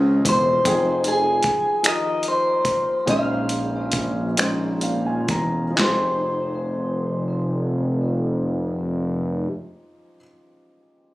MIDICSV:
0, 0, Header, 1, 5, 480
1, 0, Start_track
1, 0, Key_signature, -4, "minor"
1, 0, Tempo, 787402
1, 396, Time_signature, 6, 3, 24, 8
1, 877, Tempo, 815217
1, 1837, Tempo, 878477
1, 2797, Tempo, 975610
1, 5904, End_track
2, 0, Start_track
2, 0, Title_t, "Clean electric guitar"
2, 0, Program_c, 0, 27
2, 0, Note_on_c, 0, 77, 94
2, 143, Note_off_c, 0, 77, 0
2, 175, Note_on_c, 0, 72, 87
2, 659, Note_off_c, 0, 72, 0
2, 659, Note_on_c, 0, 68, 80
2, 1132, Note_on_c, 0, 75, 88
2, 1137, Note_off_c, 0, 68, 0
2, 1367, Note_off_c, 0, 75, 0
2, 1374, Note_on_c, 0, 72, 73
2, 1854, Note_off_c, 0, 72, 0
2, 1856, Note_on_c, 0, 77, 80
2, 2785, Note_off_c, 0, 77, 0
2, 3281, Note_on_c, 0, 72, 63
2, 5438, Note_off_c, 0, 72, 0
2, 5904, End_track
3, 0, Start_track
3, 0, Title_t, "Grand piano"
3, 0, Program_c, 1, 0
3, 0, Control_c, 1, 64, 127
3, 0, Note_on_c, 1, 49, 79
3, 0, Note_on_c, 1, 60, 69
3, 0, Note_on_c, 1, 65, 76
3, 0, Note_on_c, 1, 75, 83
3, 322, Note_off_c, 1, 49, 0
3, 325, Note_off_c, 1, 60, 0
3, 330, Note_off_c, 1, 65, 0
3, 333, Note_off_c, 1, 75, 0
3, 388, Note_on_c, 1, 53, 55
3, 394, Note_on_c, 1, 63, 56
3, 400, Note_on_c, 1, 79, 54
3, 404, Control_c, 1, 64, 0
3, 408, Note_on_c, 1, 68, 71
3, 509, Control_c, 1, 64, 127
3, 1041, Note_off_c, 1, 53, 0
3, 1045, Note_off_c, 1, 63, 0
3, 1047, Note_off_c, 1, 79, 0
3, 1051, Note_off_c, 1, 68, 0
3, 1107, Note_on_c, 1, 53, 55
3, 1115, Note_on_c, 1, 63, 51
3, 1123, Note_on_c, 1, 67, 45
3, 1130, Note_on_c, 1, 70, 66
3, 1764, Note_off_c, 1, 53, 0
3, 1768, Note_off_c, 1, 63, 0
3, 1772, Note_off_c, 1, 67, 0
3, 1775, Note_off_c, 1, 70, 0
3, 1829, Note_on_c, 1, 46, 57
3, 1833, Note_on_c, 1, 56, 53
3, 1838, Note_on_c, 1, 61, 56
3, 1843, Note_on_c, 1, 63, 60
3, 1845, Control_c, 1, 64, 0
3, 1849, Note_on_c, 1, 72, 65
3, 1949, Control_c, 1, 64, 127
3, 2475, Note_off_c, 1, 46, 0
3, 2477, Note_off_c, 1, 56, 0
3, 2479, Note_off_c, 1, 61, 0
3, 2482, Note_off_c, 1, 63, 0
3, 2485, Note_off_c, 1, 72, 0
3, 2545, Note_on_c, 1, 46, 59
3, 2550, Note_on_c, 1, 56, 53
3, 2554, Note_on_c, 1, 61, 50
3, 2559, Note_on_c, 1, 63, 57
3, 2564, Note_on_c, 1, 72, 63
3, 2800, Note_on_c, 1, 77, 56
3, 2905, Note_off_c, 1, 77, 0
3, 2914, Note_on_c, 1, 80, 49
3, 3021, Note_off_c, 1, 80, 0
3, 3030, Note_on_c, 1, 82, 55
3, 3195, Note_off_c, 1, 46, 0
3, 3197, Note_off_c, 1, 56, 0
3, 3199, Note_off_c, 1, 61, 0
3, 3202, Note_off_c, 1, 63, 0
3, 3204, Note_off_c, 1, 72, 0
3, 3229, Note_on_c, 1, 53, 51
3, 3250, Note_off_c, 1, 82, 0
3, 3251, Note_on_c, 1, 63, 52
3, 3272, Control_c, 1, 64, 0
3, 3275, Note_on_c, 1, 67, 52
3, 3299, Note_on_c, 1, 68, 59
3, 3351, Control_c, 1, 64, 127
3, 5413, Note_off_c, 1, 53, 0
3, 5423, Note_off_c, 1, 63, 0
3, 5436, Note_off_c, 1, 67, 0
3, 5447, Note_off_c, 1, 68, 0
3, 5904, End_track
4, 0, Start_track
4, 0, Title_t, "Analog synth bass"
4, 0, Program_c, 2, 38
4, 0, Note_on_c, 2, 37, 109
4, 134, Note_off_c, 2, 37, 0
4, 155, Note_on_c, 2, 28, 95
4, 371, Note_off_c, 2, 28, 0
4, 400, Note_on_c, 2, 29, 104
4, 855, Note_off_c, 2, 29, 0
4, 882, Note_on_c, 2, 34, 43
4, 928, Note_off_c, 2, 34, 0
4, 1841, Note_on_c, 2, 34, 89
4, 3010, Note_off_c, 2, 34, 0
4, 3026, Note_on_c, 2, 28, 68
4, 3245, Note_off_c, 2, 28, 0
4, 3269, Note_on_c, 2, 29, 88
4, 5088, Note_off_c, 2, 29, 0
4, 5904, End_track
5, 0, Start_track
5, 0, Title_t, "Drums"
5, 152, Note_on_c, 9, 36, 88
5, 155, Note_on_c, 9, 42, 84
5, 213, Note_off_c, 9, 36, 0
5, 216, Note_off_c, 9, 42, 0
5, 398, Note_on_c, 9, 36, 90
5, 399, Note_on_c, 9, 42, 72
5, 459, Note_off_c, 9, 36, 0
5, 460, Note_off_c, 9, 42, 0
5, 635, Note_on_c, 9, 42, 42
5, 696, Note_off_c, 9, 42, 0
5, 869, Note_on_c, 9, 42, 43
5, 879, Note_on_c, 9, 36, 80
5, 928, Note_off_c, 9, 42, 0
5, 938, Note_off_c, 9, 36, 0
5, 1114, Note_on_c, 9, 42, 65
5, 1126, Note_on_c, 9, 26, 103
5, 1173, Note_off_c, 9, 42, 0
5, 1185, Note_off_c, 9, 26, 0
5, 1342, Note_on_c, 9, 42, 45
5, 1401, Note_off_c, 9, 42, 0
5, 1590, Note_on_c, 9, 36, 76
5, 1591, Note_on_c, 9, 42, 47
5, 1649, Note_off_c, 9, 36, 0
5, 1650, Note_off_c, 9, 42, 0
5, 1840, Note_on_c, 9, 36, 93
5, 1841, Note_on_c, 9, 42, 58
5, 1895, Note_off_c, 9, 36, 0
5, 1896, Note_off_c, 9, 42, 0
5, 2068, Note_on_c, 9, 42, 41
5, 2122, Note_off_c, 9, 42, 0
5, 2299, Note_on_c, 9, 42, 38
5, 2308, Note_on_c, 9, 36, 77
5, 2354, Note_off_c, 9, 42, 0
5, 2363, Note_off_c, 9, 36, 0
5, 2550, Note_on_c, 9, 42, 61
5, 2561, Note_on_c, 9, 26, 91
5, 2604, Note_off_c, 9, 42, 0
5, 2615, Note_off_c, 9, 26, 0
5, 2790, Note_on_c, 9, 42, 42
5, 2840, Note_off_c, 9, 42, 0
5, 3023, Note_on_c, 9, 42, 45
5, 3024, Note_on_c, 9, 36, 78
5, 3072, Note_off_c, 9, 42, 0
5, 3073, Note_off_c, 9, 36, 0
5, 3267, Note_on_c, 9, 39, 61
5, 3267, Note_on_c, 9, 43, 67
5, 3274, Note_on_c, 9, 38, 69
5, 3316, Note_off_c, 9, 39, 0
5, 3316, Note_off_c, 9, 43, 0
5, 3323, Note_off_c, 9, 38, 0
5, 5904, End_track
0, 0, End_of_file